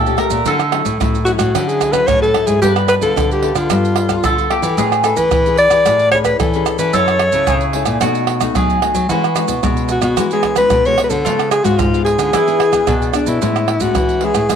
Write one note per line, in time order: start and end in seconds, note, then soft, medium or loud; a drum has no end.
0.00 0.15 A#2 medium
0.00 0.44 A#2 medium
0.00 0.14 D#4 medium
0.00 0.18 A4 medium
0.06 0.15 A3 medium
0.06 0.15 C#4 medium
0.06 0.15 G4 medium
0.06 pandeiro soft
0.06 maracas soft
0.06 surdo soft
0.17 0.35 A3 medium
0.17 0.36 C#4 medium
0.17 0.36 G4 medium
0.17 0.47 A#4 medium
0.17 pandeiro medium
0.17 tamborim medium
0.30 0.43 A#2 medium
0.30 pandeiro medium
0.30 maracas medium
0.30 surdo soft
0.45 0.97 D3 medium
0.45 0.81 D3 medium
0.45 0.62 F#3 soft
0.45 0.62 C#4 medium
0.45 0.62 E4 medium
0.45 2.69 A4 medium
0.45 pandeiro medium
0.45 maracas medium
0.45 surdo medium
0.59 pandeiro soft
0.59 tamborim medium
0.59 maracas soft
0.72 0.88 F#3 medium
0.72 0.89 C#4 medium
0.72 0.89 E4 medium
0.72 pandeiro medium
0.72 tamborim medium
0.85 0.97 A2 medium
0.85 pandeiro medium
0.85 maracas medium
0.85 surdo soft
1.00 1.35 A2 medium
1.00 1.52 A2 medium
1.00 1.16 F#3 medium
1.00 1.17 C#4 medium
1.00 1.17 E4 medium
1.00 pandeiro medium
1.00 tamborim medium
1.00 maracas medium
1.00 surdo loud
1.15 pandeiro soft
1.15 maracas soft
1.25 1.50 F#3 medium
1.25 1.50 C#4 medium
1.25 1.50 E4 medium
1.25 1.32 F#4 medium
1.25 pandeiro medium
1.25 maracas medium
1.38 1.52 A2 loud
1.38 1.69 F#4 medium
1.38 pandeiro medium
1.38 tamborim medium
1.38 maracas medium
1.55 2.00 D3 loud
1.55 2.06 D3 medium
1.55 1.91 F#3 medium
1.55 1.91 C#4 medium
1.55 1.91 E4 medium
1.55 pandeiro medium
1.55 tamborim medium
1.55 maracas medium
1.55 surdo medium
1.67 1.94 G#4 medium
1.67 pandeiro soft
1.67 maracas soft
1.81 pandeiro medium
1.81 tamborim medium
1.81 maracas medium
1.81 surdo soft
1.92 2.30 F#3 medium
1.92 2.30 C#4 medium
1.92 2.30 E4 medium
1.92 2.08 B4 medium
1.92 pandeiro medium
1.92 tamborim medium
1.92 maracas medium
1.92 surdo soft
2.07 2.60 A2 medium
2.07 2.31 A2 loud
2.07 2.21 C#5 loud
2.07 pandeiro medium
2.07 tamborim medium
2.07 maracas medium
2.07 surdo loud
2.22 2.48 A4 medium
2.22 pandeiro soft
2.22 maracas soft
2.22 surdo soft
2.34 2.60 F#3 medium
2.34 2.60 C#4 medium
2.34 2.60 E4 medium
2.34 pandeiro medium
2.34 tamborim medium
2.47 2.60 G#2 medium
2.47 2.61 G#4 medium
2.47 pandeiro medium
2.47 maracas medium
2.47 surdo soft
2.62 2.97 G2 loud
2.62 3.14 G3 medium
2.62 2.99 B3 medium
2.62 2.99 F4 medium
2.62 2.74 G4 medium
2.62 2.99 A4 medium
2.62 4.25 B4 loud
2.62 pandeiro medium
2.62 maracas medium
2.62 surdo medium
2.76 pandeiro soft
2.76 tamborim medium
2.76 maracas soft
2.88 2.95 B4 medium
2.88 pandeiro medium
2.88 tamborim medium
2.88 maracas medium
3.01 3.13 D3 medium
3.01 3.39 B3 medium
3.01 3.39 F4 medium
3.01 3.28 A4 loud
3.01 3.39 A4 medium
3.01 pandeiro medium
3.01 maracas medium
3.01 surdo soft
3.16 3.51 D3 medium
3.16 3.68 D3 medium
3.16 pandeiro medium
3.16 tamborim medium
3.16 maracas medium
3.16 surdo loud
3.31 3.58 G4 medium
3.31 pandeiro soft
3.31 maracas soft
3.43 3.66 B3 medium
3.43 3.66 F4 medium
3.43 3.66 A4 medium
3.43 pandeiro medium
3.55 3.67 D3 medium
3.55 4.51 F4 medium
3.55 pandeiro medium
3.55 tamborim medium
3.55 maracas medium
3.70 4.16 G2 medium
3.70 4.22 G3 medium
3.70 3.96 B3 medium
3.70 3.96 F4 medium
3.70 3.96 A4 medium
3.70 pandeiro medium
3.70 tamborim medium
3.70 maracas medium
3.70 surdo medium
3.85 pandeiro soft
3.85 maracas soft
3.96 pandeiro medium
3.96 tamborim medium
4.09 4.46 B3 medium
4.09 4.46 F4 medium
4.09 4.46 A4 medium
4.09 pandeiro medium
4.09 tamborim medium
4.09 maracas medium
4.09 surdo soft
4.24 4.47 D3 medium
4.24 4.76 D3 soft
4.24 4.50 A4 medium
4.24 pandeiro medium
4.24 tamborim medium
4.24 maracas medium
4.24 surdo medium
4.38 pandeiro soft
4.38 maracas soft
4.38 surdo soft
4.50 4.67 B3 medium
4.50 4.67 F4 medium
4.50 4.78 G4 medium
4.50 4.67 A4 medium
4.50 pandeiro medium
4.50 tamborim medium
4.62 4.75 E3 medium
4.62 pandeiro medium
4.62 maracas medium
4.62 surdo soft
4.77 5.12 A2 loud
4.77 5.29 A3 medium
4.77 5.01 C#4 medium
4.77 7.00 G#4 medium
4.77 5.01 G#4 medium
4.77 5.01 B4 medium
4.77 pandeiro medium
4.77 maracas medium
4.77 surdo medium
4.92 pandeiro soft
4.92 tamborim medium
4.92 maracas soft
5.04 5.30 C#4 medium
5.04 5.30 G#4 medium
5.04 5.18 A4 medium
5.04 5.31 B4 medium
5.04 pandeiro medium
5.04 tamborim medium
5.04 maracas medium
5.17 5.29 E3 medium
5.17 5.58 B4 loud
5.17 pandeiro medium
5.17 maracas medium
5.17 surdo soft
5.31 5.66 E3 medium
5.31 5.84 E3 medium
5.31 pandeiro medium
5.31 tamborim medium
5.31 maracas medium
5.31 surdo loud
5.46 5.69 C#4 medium
5.46 5.69 G#4 medium
5.46 5.69 B4 medium
5.46 pandeiro soft
5.46 maracas soft
5.57 6.09 D5 loud
5.57 pandeiro medium
5.70 5.83 E3 loud
5.70 6.09 G#4 medium
5.70 6.09 B4 medium
5.70 pandeiro medium
5.70 tamborim medium
5.70 maracas medium
5.86 6.32 A2 medium
5.86 6.38 A3 medium
5.86 pandeiro medium
5.86 tamborim medium
5.86 maracas medium
5.86 surdo medium
5.99 pandeiro soft
5.99 maracas soft
6.11 6.39 C#4 medium
6.11 6.39 G#4 medium
6.11 6.39 B4 medium
6.11 6.18 C#5 medium
6.11 pandeiro medium
6.11 tamborim medium
6.11 surdo soft
6.25 6.38 B4 medium
6.25 pandeiro medium
6.25 tamborim medium
6.25 maracas medium
6.25 surdo soft
6.40 6.63 E3 loud
6.40 6.92 E3 medium
6.40 6.78 A4 medium
6.40 pandeiro medium
6.40 tamborim medium
6.40 maracas medium
6.40 surdo loud
6.53 6.77 C#4 medium
6.53 6.77 G#4 medium
6.53 6.78 B4 medium
6.53 pandeiro soft
6.53 maracas soft
6.53 surdo soft
6.66 pandeiro medium
6.66 tamborim medium
6.66 maracas medium
6.79 6.91 E3 medium
6.79 7.16 C#4 medium
6.79 7.17 E4 medium
6.79 7.17 A4 medium
6.79 6.96 B4 medium
6.79 pandeiro medium
6.79 maracas medium
6.79 surdo soft
6.93 7.28 F#2 loud
6.93 7.45 F#3 medium
6.93 7.49 A4 medium
6.93 7.75 C#5 medium
6.93 pandeiro medium
6.93 maracas medium
6.93 surdo medium
7.08 pandeiro soft
7.08 tamborim medium
7.08 maracas soft
7.19 pandeiro medium
7.19 tamborim medium
7.32 7.45 C#3 loud
7.32 7.70 C#4 medium
7.32 7.70 E4 medium
7.32 7.70 A4 medium
7.32 pandeiro medium
7.32 maracas medium
7.32 surdo soft
7.47 7.83 C#3 medium
7.47 8.00 C#3 medium
7.47 8.01 G#4 medium
7.47 pandeiro medium
7.47 tamborim medium
7.47 maracas medium
7.47 surdo loud
7.61 pandeiro soft
7.61 maracas soft
7.73 7.98 C#4 medium
7.73 7.98 E4 medium
7.73 7.98 A4 medium
7.73 pandeiro medium
7.85 7.99 A#2 loud
7.85 pandeiro medium
7.85 tamborim medium
7.85 maracas medium
8.01 8.48 B2 medium
8.01 8.54 B2 medium
8.01 8.38 A3 medium
8.01 8.39 D#4 medium
8.01 8.55 F#4 medium
8.01 8.39 F#4 medium
8.01 pandeiro medium
8.01 tamborim medium
8.01 maracas medium
8.01 surdo medium
8.15 pandeiro soft
8.15 maracas soft
8.27 pandeiro medium
8.27 tamborim medium
8.41 8.78 A3 medium
8.41 8.78 D#4 medium
8.41 8.78 F#4 medium
8.41 pandeiro medium
8.41 tamborim medium
8.41 maracas medium
8.41 surdo soft
8.55 8.79 F#3 medium
8.55 9.07 F#3 medium
8.55 9.09 G#4 medium
8.55 pandeiro medium
8.55 tamborim medium
8.55 maracas medium
8.55 surdo loud
8.70 pandeiro soft
8.70 maracas soft
8.70 surdo soft
8.82 8.99 A3 medium
8.82 8.99 D#4 medium
8.82 8.99 F#4 medium
8.82 pandeiro medium
8.82 tamborim medium
8.94 9.07 F#3 medium
8.94 pandeiro medium
8.94 maracas medium
8.94 surdo soft
9.09 9.44 E3 loud
9.09 9.62 E3 medium
9.09 9.26 G#3 medium
9.09 9.27 C#4 medium
9.09 11.32 F#4 medium
9.09 9.27 F#4 medium
9.09 pandeiro medium
9.09 maracas medium
9.09 surdo medium
9.24 pandeiro soft
9.24 tamborim medium
9.24 maracas soft
9.36 9.53 G#3 medium
9.36 9.53 C#4 medium
9.36 9.53 F#4 medium
9.36 pandeiro medium
9.36 tamborim medium
9.36 maracas medium
9.48 9.60 B2 medium
9.48 pandeiro medium
9.48 maracas medium
9.48 surdo soft
9.63 9.98 B2 medium
9.63 10.15 B2 medium
9.63 10.13 G#3 medium
9.63 10.14 C#4 medium
9.63 10.14 F#4 medium
9.63 pandeiro medium
9.63 tamborim medium
9.63 maracas medium
9.63 surdo loud
9.77 pandeiro soft
9.77 maracas soft
9.89 10.03 F#4 medium
9.89 pandeiro medium
9.89 maracas medium
10.02 10.14 B2 loud
10.02 10.29 F#4 medium
10.02 pandeiro medium
10.02 tamborim medium
10.02 maracas medium
10.17 10.63 E3 medium
10.17 10.69 E3 medium
10.17 10.26 G#3 medium
10.17 10.26 C#4 medium
10.17 10.26 F#4 medium
10.17 pandeiro medium
10.17 tamborim medium
10.17 maracas medium
10.17 surdo medium
10.31 10.54 G#3 medium
10.31 10.55 C#4 medium
10.31 10.55 F#4 medium
10.31 10.57 G#4 medium
10.31 pandeiro soft
10.31 maracas soft
10.43 pandeiro medium
10.43 tamborim medium
10.43 surdo soft
10.56 10.81 G#3 medium
10.56 10.81 C#4 medium
10.56 10.81 F#4 medium
10.56 10.88 B4 loud
10.56 pandeiro medium
10.56 tamborim medium
10.56 maracas medium
10.56 surdo soft
10.70 10.95 B2 loud
10.70 11.23 B2 medium
10.70 pandeiro medium
10.70 tamborim medium
10.70 maracas medium
10.70 surdo loud
10.85 10.95 G#3 medium
10.85 10.95 C#4 medium
10.85 10.96 F#4 medium
10.85 11.04 C#5 loud
10.85 pandeiro soft
10.85 maracas soft
10.85 surdo soft
10.98 11.16 G#3 medium
10.98 11.16 C#4 medium
10.98 11.17 F#4 medium
10.98 pandeiro medium
10.98 tamborim medium
11.04 11.11 B4 medium
11.10 11.23 D3 loud
11.10 11.51 A4 loud
11.10 pandeiro medium
11.10 maracas medium
11.10 surdo soft
11.25 11.77 C#3 medium
11.25 11.60 C#3 loud
11.25 11.62 G#3 medium
11.25 11.62 B3 medium
11.25 12.29 F4 medium
11.25 11.62 F4 medium
11.25 pandeiro medium
11.25 maracas medium
11.25 surdo medium
11.39 pandeiro soft
11.39 tamborim medium
11.39 maracas soft
11.51 11.66 G#4 medium
11.51 pandeiro medium
11.51 tamborim medium
11.51 maracas medium
11.64 11.77 G#2 medium
11.64 11.88 G#3 medium
11.64 11.88 B3 medium
11.64 11.89 F4 medium
11.64 11.80 F#4 medium
11.64 pandeiro medium
11.64 maracas medium
11.64 surdo soft
11.79 12.14 G#2 medium
11.79 12.31 G#2 medium
11.79 12.04 F4 medium
11.79 pandeiro medium
11.79 tamborim medium
11.79 maracas medium
11.79 surdo loud
11.93 12.32 G#3 medium
11.93 12.32 B3 medium
11.93 12.32 F4 medium
11.93 pandeiro soft
11.93 maracas soft
12.05 13.10 G#4 loud
12.05 pandeiro medium
12.19 12.31 D3 loud
12.19 pandeiro medium
12.19 tamborim medium
12.19 maracas medium
12.33 12.85 E3 medium
12.33 12.80 E3 medium
12.33 12.43 B3 medium
12.33 12.43 D4 medium
12.33 12.88 E4 medium
12.33 12.43 G#4 medium
12.33 pandeiro medium
12.33 tamborim medium
12.33 maracas medium
12.33 surdo medium
12.48 12.70 B3 medium
12.48 12.70 D4 medium
12.48 12.71 G#4 medium
12.48 pandeiro soft
12.48 maracas soft
12.60 pandeiro medium
12.60 tamborim medium
12.72 13.09 B3 medium
12.72 13.10 D4 medium
12.72 13.10 G#4 medium
12.72 pandeiro medium
12.72 tamborim medium
12.72 maracas medium
12.72 surdo soft
12.87 13.11 B2 medium
12.87 13.38 D4 medium
12.87 pandeiro medium
12.87 tamborim medium
12.87 maracas medium
12.87 surdo loud
13.02 pandeiro soft
13.02 maracas soft
13.02 surdo soft
13.14 13.37 B3 medium
13.14 13.38 D4 medium
13.14 13.30 D4 medium
13.14 13.38 G#4 medium
13.14 pandeiro medium
13.14 tamborim medium
13.14 maracas medium
13.26 13.39 B2 medium
13.26 13.83 E4 medium
13.26 pandeiro medium
13.26 maracas medium
13.26 surdo soft
13.41 13.93 A2 medium
13.41 13.76 A2 medium
13.41 13.67 G#3 medium
13.41 13.68 C#4 medium
13.41 13.68 E4 medium
13.41 pandeiro medium
13.41 maracas medium
13.41 surdo medium
13.56 pandeiro soft
13.56 tamborim medium
13.56 maracas soft
13.68 pandeiro medium
13.68 tamborim medium
13.80 13.93 A2 medium
13.80 14.18 G#3 medium
13.80 14.18 C#4 medium
13.80 14.18 E4 medium
13.80 14.26 F#4 medium
13.80 pandeiro medium
13.80 maracas medium
13.80 surdo soft
13.95 14.30 E3 medium
13.95 14.48 E3 medium
13.95 pandeiro medium
13.95 tamborim medium
13.95 maracas medium
13.95 surdo medium
14.09 pandeiro soft
14.09 maracas soft
14.21 14.39 G#3 soft
14.21 14.39 C#4 medium
14.21 14.39 E4 medium
14.21 14.56 G#4 medium
14.21 pandeiro medium
14.34 14.48 A2 medium
14.34 pandeiro medium
14.34 tamborim medium
14.34 maracas medium
14.49 14.56 A2 medium
14.49 14.56 G#3 medium
14.49 14.56 C#4 medium
14.49 14.56 E4 medium
14.49 pandeiro medium
14.49 tamborim medium
14.49 maracas medium
14.49 surdo medium